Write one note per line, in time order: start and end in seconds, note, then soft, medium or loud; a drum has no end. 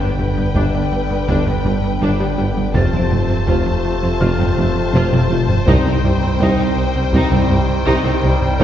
0.00 2.76 G1 medium
0.00 0.12 G2 medium
0.00 0.08 G2 medium
0.00 2.71 D3 medium
0.00 2.71 G3 medium
0.00 2.71 B3 medium
0.00 0.08 B3 soft
0.00 2.71 D4 medium
0.00 2.70 B4 medium
0.00 2.71 G5 medium
0.00 0.16 A#5 soft
0.00 1.98 G6 medium
0.00 0.16 A#6 medium
0.18 0.26 G1 medium
0.18 0.27 G1 medium
0.18 0.30 G2 medium
0.18 0.27 G2 medium
0.18 0.27 G3 medium
0.18 taiko low medium
0.36 0.45 G2 medium
0.36 0.48 G2 medium
0.36 0.45 B3 medium
0.36 taiko low medium
0.55 0.63 G1 medium
0.55 0.63 G1 loud
0.55 0.63 G2 medium
0.55 0.67 G2 loud
0.55 0.73 D4 medium
0.55 taiko medium
0.74 0.85 G2 medium
0.92 1.03 G2 medium
1.10 1.17 G2 medium
1.10 1.21 G2 medium
1.10 1.18 B3 medium
1.28 1.36 G1 medium
1.28 1.40 G2 loud
1.28 1.36 G2 medium
1.28 1.45 D4 medium
1.28 taiko medium
1.46 1.54 G2 medium
1.46 1.58 G2 medium
1.46 1.55 B3 medium
1.46 taiko low medium
1.65 1.72 G1 medium
1.65 1.76 G2 medium
1.65 1.73 G2 medium
1.65 1.72 G3 medium
1.65 taiko low medium
1.84 1.95 G2 medium
2.01 2.09 G1 medium
2.01 2.13 G2 loud
2.01 2.09 G2 loud
2.01 2.19 D4 medium
2.20 2.28 G2 medium
2.20 2.31 G3 medium
2.20 2.27 B3 medium
2.37 2.45 G1 medium
2.37 2.46 G1 medium
2.37 2.46 G2 medium
2.37 2.45 G3 medium
2.37 2.49 G3 medium
2.57 2.68 G2 medium
2.57 taiko low medium
2.74 2.82 F1 medium
2.74 2.82 F1 loud
2.74 5.69 F1 medium
2.74 2.86 F2 loud
2.74 2.83 F2 loud
2.74 5.51 C3 medium
2.74 5.51 A3 medium
2.74 8.56 C4 medium
2.74 5.51 F4 medium
2.74 2.92 F4 medium
2.74 8.56 C5 medium
2.74 5.64 A5 medium
2.74 4.91 A6 medium
2.74 taiko loud
2.93 3.04 F2 medium
2.93 3.01 F2 medium
2.93 3.01 C4 medium
3.11 3.19 F1 medium
3.11 3.22 F2 medium
3.11 3.19 F2 medium
3.11 3.18 A3 medium
3.11 taiko low medium
3.29 3.41 F2 medium
3.29 3.38 F2 medium
3.29 3.37 C4 medium
3.29 taiko low medium
3.47 3.55 F1 medium
3.47 3.55 F1 loud
3.47 3.59 F2 loud
3.47 3.56 F2 loud
3.47 3.65 F4 medium
3.47 taiko medium
3.66 3.77 F2 medium
3.85 3.96 F2 medium
4.02 4.14 F2 medium
4.02 4.11 F2 medium
4.02 4.10 C4 medium
4.20 4.28 F1 medium
4.20 4.29 F1 medium
4.20 4.28 F2 loud
4.20 4.32 F2 loud
4.20 4.38 F4 medium
4.20 6.36 F6 medium
4.20 taiko medium
4.39 4.47 F2 medium
4.39 4.51 F2 medium
4.39 4.47 C4 medium
4.39 taiko low medium
4.57 4.65 F1 medium
4.57 4.65 F2 medium
4.57 4.69 F2 medium
4.57 4.65 A3 medium
4.57 taiko low medium
4.76 4.87 F2 medium
4.94 5.01 F1 loud
4.94 5.02 F1 medium
4.94 5.01 F2 loud
4.94 5.06 F2 loud
4.94 5.11 F4 loud
4.94 taiko low-mid loud
5.12 5.20 F2 medium
5.12 5.24 F3 medium
5.12 5.20 C4 medium
5.12 taiko low-mid loud
5.30 5.38 F1 medium
5.30 5.39 F1 medium
5.30 5.38 F2 medium
5.30 5.42 F3 medium
5.30 5.38 A3 medium
5.30 taiko low-mid loud
5.48 5.60 F2 medium
5.48 taiko low medium
5.66 5.74 C2 loud
5.66 5.75 C2 loud
5.66 5.78 C2 loud
5.66 5.75 C2 loud
5.66 8.62 C2 medium
5.66 8.64 D#3 loud
5.66 8.64 G3 loud
5.66 5.85 D#4 loud
5.66 8.64 G4 medium
5.66 8.64 G5 loud
5.66 taiko loud
5.85 5.93 C2 medium
5.85 5.97 C2 medium
5.85 5.93 C4 medium
6.03 6.11 C2 medium
6.03 6.15 C2 medium
6.03 6.11 G3 medium
6.03 taiko low medium
6.22 6.29 C2 medium
6.22 6.33 C2 medium
6.22 6.30 C4 medium
6.22 taiko low medium
6.40 6.51 C2 loud
6.40 6.48 C2 loud
6.40 6.58 D#4 loud
6.40 taiko medium
6.59 6.70 C2 medium
6.77 6.88 C2 medium
6.95 7.03 C2 medium
6.95 7.06 C2 medium
6.95 7.03 C4 medium
7.13 7.20 C2 loud
7.13 7.21 C2 loud
7.13 7.25 C2 loud
7.13 7.31 D#4 loud
7.13 taiko loud
7.31 7.39 C2 medium
7.31 7.43 C2 medium
7.31 7.39 C4 medium
7.31 taiko low medium
7.50 7.57 C2 medium
7.50 7.61 C2 medium
7.50 7.58 C2 medium
7.50 7.58 G3 medium
7.50 taiko low medium
7.69 7.80 C2 medium
7.86 7.94 C2 loud
7.86 7.98 C2 loud
7.86 7.95 C2 loud
7.86 8.03 D#4 loud
8.05 8.12 C2 medium
8.05 8.17 C3 medium
8.05 8.12 C4 medium
8.23 8.31 C2 medium
8.23 8.32 C2 medium
8.23 8.35 C3 medium
8.23 8.30 G3 medium
8.41 8.53 C2 medium
8.41 taiko low medium
8.59 8.64 D#1 medium
8.59 8.64 D#2 loud
8.59 8.64 A#3 medium
8.59 8.64 D#4 loud
8.59 8.64 A#4 loud
8.59 taiko loud